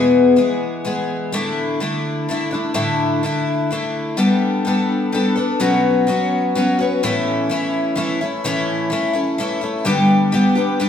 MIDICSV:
0, 0, Header, 1, 2, 480
1, 0, Start_track
1, 0, Tempo, 473560
1, 1351, Time_signature, 3, 2, 24, 8
1, 11036, End_track
2, 0, Start_track
2, 0, Title_t, "Twelve-string acoustic guitar"
2, 0, Program_c, 0, 25
2, 0, Note_on_c, 0, 40, 81
2, 0, Note_on_c, 0, 47, 83
2, 0, Note_on_c, 0, 52, 86
2, 0, Note_on_c, 0, 56, 83
2, 0, Note_on_c, 0, 59, 88
2, 0, Note_on_c, 0, 68, 86
2, 360, Note_off_c, 0, 56, 0
2, 363, Note_off_c, 0, 52, 0
2, 367, Note_on_c, 0, 52, 60
2, 372, Note_on_c, 0, 56, 67
2, 374, Note_off_c, 0, 59, 0
2, 376, Note_off_c, 0, 40, 0
2, 376, Note_off_c, 0, 68, 0
2, 378, Note_off_c, 0, 47, 0
2, 386, Note_on_c, 0, 59, 64
2, 388, Note_on_c, 0, 68, 68
2, 851, Note_off_c, 0, 56, 0
2, 853, Note_off_c, 0, 52, 0
2, 857, Note_on_c, 0, 52, 70
2, 861, Note_off_c, 0, 59, 0
2, 864, Note_on_c, 0, 56, 68
2, 869, Note_off_c, 0, 68, 0
2, 873, Note_on_c, 0, 59, 67
2, 881, Note_on_c, 0, 68, 72
2, 1341, Note_on_c, 0, 45, 74
2, 1348, Note_off_c, 0, 52, 0
2, 1348, Note_off_c, 0, 56, 0
2, 1352, Note_off_c, 0, 59, 0
2, 1352, Note_on_c, 0, 50, 85
2, 1356, Note_off_c, 0, 68, 0
2, 1356, Note_on_c, 0, 57, 81
2, 1356, Note_on_c, 0, 62, 89
2, 1360, Note_on_c, 0, 64, 93
2, 1815, Note_off_c, 0, 50, 0
2, 1827, Note_off_c, 0, 45, 0
2, 1827, Note_on_c, 0, 50, 69
2, 1833, Note_off_c, 0, 57, 0
2, 1837, Note_off_c, 0, 64, 0
2, 1837, Note_on_c, 0, 57, 67
2, 1839, Note_off_c, 0, 62, 0
2, 1843, Note_on_c, 0, 62, 72
2, 1852, Note_on_c, 0, 64, 70
2, 2305, Note_off_c, 0, 50, 0
2, 2317, Note_on_c, 0, 50, 60
2, 2323, Note_off_c, 0, 64, 0
2, 2324, Note_off_c, 0, 57, 0
2, 2328, Note_on_c, 0, 57, 70
2, 2335, Note_off_c, 0, 62, 0
2, 2339, Note_on_c, 0, 62, 71
2, 2342, Note_on_c, 0, 64, 78
2, 2530, Note_off_c, 0, 64, 0
2, 2542, Note_on_c, 0, 64, 50
2, 2548, Note_off_c, 0, 62, 0
2, 2556, Note_off_c, 0, 50, 0
2, 2560, Note_on_c, 0, 62, 48
2, 2561, Note_off_c, 0, 57, 0
2, 2576, Note_on_c, 0, 57, 46
2, 2769, Note_off_c, 0, 57, 0
2, 2774, Note_off_c, 0, 62, 0
2, 2779, Note_off_c, 0, 64, 0
2, 2780, Note_on_c, 0, 45, 82
2, 2780, Note_on_c, 0, 50, 80
2, 2781, Note_on_c, 0, 57, 88
2, 2786, Note_on_c, 0, 62, 88
2, 2791, Note_on_c, 0, 64, 83
2, 3261, Note_off_c, 0, 50, 0
2, 3268, Note_off_c, 0, 45, 0
2, 3269, Note_off_c, 0, 57, 0
2, 3271, Note_off_c, 0, 62, 0
2, 3273, Note_on_c, 0, 50, 61
2, 3274, Note_off_c, 0, 64, 0
2, 3281, Note_on_c, 0, 57, 64
2, 3290, Note_on_c, 0, 62, 66
2, 3299, Note_on_c, 0, 64, 77
2, 3744, Note_off_c, 0, 50, 0
2, 3755, Note_off_c, 0, 57, 0
2, 3756, Note_on_c, 0, 50, 64
2, 3764, Note_off_c, 0, 62, 0
2, 3765, Note_off_c, 0, 64, 0
2, 3767, Note_on_c, 0, 57, 70
2, 3777, Note_on_c, 0, 62, 71
2, 3777, Note_on_c, 0, 64, 70
2, 4222, Note_off_c, 0, 50, 0
2, 4225, Note_off_c, 0, 62, 0
2, 4226, Note_on_c, 0, 55, 83
2, 4227, Note_off_c, 0, 57, 0
2, 4231, Note_on_c, 0, 59, 79
2, 4237, Note_on_c, 0, 62, 92
2, 4238, Note_off_c, 0, 64, 0
2, 4242, Note_on_c, 0, 69, 90
2, 4697, Note_off_c, 0, 55, 0
2, 4710, Note_on_c, 0, 55, 64
2, 4718, Note_off_c, 0, 62, 0
2, 4721, Note_off_c, 0, 69, 0
2, 4724, Note_off_c, 0, 59, 0
2, 4728, Note_on_c, 0, 59, 62
2, 4733, Note_on_c, 0, 62, 71
2, 4741, Note_on_c, 0, 69, 71
2, 5182, Note_off_c, 0, 55, 0
2, 5186, Note_off_c, 0, 59, 0
2, 5194, Note_on_c, 0, 55, 66
2, 5198, Note_on_c, 0, 59, 69
2, 5202, Note_off_c, 0, 62, 0
2, 5204, Note_off_c, 0, 69, 0
2, 5214, Note_on_c, 0, 62, 67
2, 5216, Note_on_c, 0, 69, 77
2, 5416, Note_off_c, 0, 69, 0
2, 5428, Note_on_c, 0, 69, 51
2, 5433, Note_off_c, 0, 62, 0
2, 5436, Note_off_c, 0, 55, 0
2, 5438, Note_off_c, 0, 59, 0
2, 5446, Note_on_c, 0, 62, 48
2, 5456, Note_on_c, 0, 59, 44
2, 5670, Note_off_c, 0, 59, 0
2, 5673, Note_on_c, 0, 47, 82
2, 5674, Note_off_c, 0, 69, 0
2, 5676, Note_on_c, 0, 54, 82
2, 5680, Note_off_c, 0, 62, 0
2, 5682, Note_on_c, 0, 59, 91
2, 5684, Note_on_c, 0, 61, 87
2, 5689, Note_on_c, 0, 66, 87
2, 6138, Note_off_c, 0, 54, 0
2, 6151, Note_off_c, 0, 59, 0
2, 6151, Note_on_c, 0, 54, 67
2, 6156, Note_off_c, 0, 47, 0
2, 6163, Note_on_c, 0, 59, 72
2, 6164, Note_off_c, 0, 61, 0
2, 6164, Note_off_c, 0, 66, 0
2, 6168, Note_on_c, 0, 61, 69
2, 6176, Note_on_c, 0, 66, 74
2, 6631, Note_off_c, 0, 54, 0
2, 6641, Note_off_c, 0, 59, 0
2, 6643, Note_on_c, 0, 54, 77
2, 6647, Note_off_c, 0, 66, 0
2, 6651, Note_on_c, 0, 59, 76
2, 6657, Note_off_c, 0, 61, 0
2, 6661, Note_on_c, 0, 61, 72
2, 6666, Note_on_c, 0, 66, 75
2, 6867, Note_off_c, 0, 66, 0
2, 6879, Note_on_c, 0, 66, 56
2, 6881, Note_off_c, 0, 54, 0
2, 6885, Note_off_c, 0, 59, 0
2, 6885, Note_off_c, 0, 61, 0
2, 6897, Note_on_c, 0, 61, 50
2, 6906, Note_on_c, 0, 59, 47
2, 7118, Note_off_c, 0, 61, 0
2, 7119, Note_off_c, 0, 66, 0
2, 7126, Note_on_c, 0, 45, 86
2, 7129, Note_off_c, 0, 59, 0
2, 7129, Note_on_c, 0, 52, 90
2, 7130, Note_on_c, 0, 61, 96
2, 7133, Note_on_c, 0, 57, 98
2, 7140, Note_on_c, 0, 64, 99
2, 7584, Note_off_c, 0, 52, 0
2, 7597, Note_off_c, 0, 57, 0
2, 7597, Note_on_c, 0, 52, 65
2, 7600, Note_off_c, 0, 61, 0
2, 7602, Note_off_c, 0, 45, 0
2, 7609, Note_off_c, 0, 64, 0
2, 7609, Note_on_c, 0, 57, 69
2, 7612, Note_on_c, 0, 61, 76
2, 7622, Note_on_c, 0, 64, 78
2, 8051, Note_off_c, 0, 52, 0
2, 8063, Note_on_c, 0, 52, 73
2, 8066, Note_off_c, 0, 57, 0
2, 8066, Note_off_c, 0, 61, 0
2, 8077, Note_off_c, 0, 64, 0
2, 8078, Note_on_c, 0, 57, 74
2, 8078, Note_on_c, 0, 61, 80
2, 8090, Note_on_c, 0, 64, 81
2, 8309, Note_off_c, 0, 64, 0
2, 8310, Note_off_c, 0, 52, 0
2, 8318, Note_off_c, 0, 57, 0
2, 8318, Note_off_c, 0, 61, 0
2, 8321, Note_on_c, 0, 64, 55
2, 8333, Note_on_c, 0, 61, 50
2, 8343, Note_on_c, 0, 57, 42
2, 8557, Note_off_c, 0, 57, 0
2, 8557, Note_on_c, 0, 45, 83
2, 8559, Note_off_c, 0, 64, 0
2, 8560, Note_off_c, 0, 61, 0
2, 8564, Note_on_c, 0, 52, 88
2, 8569, Note_on_c, 0, 57, 97
2, 8572, Note_on_c, 0, 61, 88
2, 8574, Note_on_c, 0, 64, 99
2, 9007, Note_off_c, 0, 52, 0
2, 9020, Note_on_c, 0, 52, 67
2, 9027, Note_off_c, 0, 57, 0
2, 9027, Note_off_c, 0, 61, 0
2, 9036, Note_off_c, 0, 45, 0
2, 9036, Note_off_c, 0, 64, 0
2, 9039, Note_on_c, 0, 57, 70
2, 9039, Note_on_c, 0, 61, 74
2, 9049, Note_on_c, 0, 64, 79
2, 9245, Note_off_c, 0, 64, 0
2, 9257, Note_on_c, 0, 64, 54
2, 9258, Note_off_c, 0, 61, 0
2, 9267, Note_off_c, 0, 52, 0
2, 9269, Note_off_c, 0, 57, 0
2, 9270, Note_on_c, 0, 61, 49
2, 9282, Note_on_c, 0, 57, 48
2, 9506, Note_off_c, 0, 64, 0
2, 9510, Note_on_c, 0, 52, 76
2, 9513, Note_off_c, 0, 57, 0
2, 9513, Note_off_c, 0, 61, 0
2, 9525, Note_on_c, 0, 57, 75
2, 9529, Note_on_c, 0, 61, 78
2, 9534, Note_on_c, 0, 64, 82
2, 9730, Note_off_c, 0, 64, 0
2, 9742, Note_on_c, 0, 64, 52
2, 9746, Note_off_c, 0, 61, 0
2, 9752, Note_off_c, 0, 52, 0
2, 9756, Note_off_c, 0, 57, 0
2, 9758, Note_on_c, 0, 61, 50
2, 9768, Note_on_c, 0, 57, 48
2, 9981, Note_on_c, 0, 50, 80
2, 9983, Note_on_c, 0, 43, 83
2, 9988, Note_off_c, 0, 64, 0
2, 9989, Note_on_c, 0, 55, 88
2, 9992, Note_off_c, 0, 57, 0
2, 9995, Note_off_c, 0, 61, 0
2, 9995, Note_on_c, 0, 67, 93
2, 9997, Note_on_c, 0, 59, 89
2, 9999, Note_on_c, 0, 62, 94
2, 10449, Note_off_c, 0, 55, 0
2, 10461, Note_on_c, 0, 55, 73
2, 10462, Note_off_c, 0, 59, 0
2, 10467, Note_off_c, 0, 50, 0
2, 10467, Note_off_c, 0, 62, 0
2, 10467, Note_off_c, 0, 67, 0
2, 10468, Note_off_c, 0, 43, 0
2, 10474, Note_on_c, 0, 59, 75
2, 10479, Note_on_c, 0, 62, 74
2, 10479, Note_on_c, 0, 67, 76
2, 10685, Note_off_c, 0, 67, 0
2, 10697, Note_on_c, 0, 67, 58
2, 10701, Note_off_c, 0, 62, 0
2, 10707, Note_off_c, 0, 55, 0
2, 10709, Note_off_c, 0, 59, 0
2, 10713, Note_on_c, 0, 62, 49
2, 10721, Note_on_c, 0, 59, 48
2, 10728, Note_on_c, 0, 55, 48
2, 10931, Note_off_c, 0, 55, 0
2, 10934, Note_off_c, 0, 59, 0
2, 10943, Note_on_c, 0, 55, 75
2, 10944, Note_off_c, 0, 62, 0
2, 10945, Note_off_c, 0, 67, 0
2, 10946, Note_on_c, 0, 59, 76
2, 10956, Note_on_c, 0, 62, 83
2, 10962, Note_on_c, 0, 67, 79
2, 11036, Note_off_c, 0, 55, 0
2, 11036, Note_off_c, 0, 59, 0
2, 11036, Note_off_c, 0, 62, 0
2, 11036, Note_off_c, 0, 67, 0
2, 11036, End_track
0, 0, End_of_file